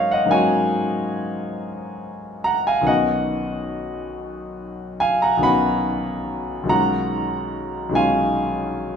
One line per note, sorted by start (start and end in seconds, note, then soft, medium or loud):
0.00 0.24 G#2 soft
0.00 0.25 F#3 soft
0.00 0.27 A#3 soft
0.00 0.27 C#4 soft
0.00 0.29 F#4 soft
0.00 2.90 C5 medium
0.00 0.10 C#5 medium
0.00 0.13 D#5 medium
0.00 0.12 F5 medium
0.11 0.32 D#5 medium
0.11 0.33 F#5 medium
0.26 2.80 G#2 soft
0.26 2.81 F#3 soft
0.26 2.82 A#3 soft
0.31 2.83 C#4 soft
0.31 2.83 F#4 soft
0.31 2.41 C#5 medium
0.31 2.45 G#5 medium
2.44 2.66 F#5 medium
2.44 2.66 A#5 medium
2.67 2.87 F5 medium
2.67 2.88 G#5 medium
2.81 5.35 B1 soft
2.81 5.37 D#3 soft
2.81 5.38 B3 soft
2.85 5.39 C#4 soft
2.85 5.39 F#4 soft
2.85 4.98 D#5 medium
2.85 5.01 F#5 medium
5.00 5.21 F5 medium
5.00 5.22 G#5 medium
5.22 5.42 F#5 medium
5.22 5.44 A#5 medium
5.37 6.62 B1 soft
5.37 6.64 D#3 soft
5.37 6.65 B3 soft
5.41 6.66 C#4 soft
5.41 6.67 F#4 soft
5.41 6.67 F#5 medium
5.41 6.70 B5 medium
6.63 7.87 B1 soft
6.63 7.89 D#3 soft
6.63 7.90 G#3 soft
6.68 7.91 C#4 soft
6.68 7.91 F4 soft
6.68 7.91 F#5 medium
6.68 7.95 A#5 medium
7.89 8.96 B1 soft
7.89 8.96 D#3 soft
7.89 8.96 G#3 soft
7.94 8.96 C#4 soft
7.94 8.96 F4 soft
7.94 8.96 F5 medium
7.94 8.96 G#5 medium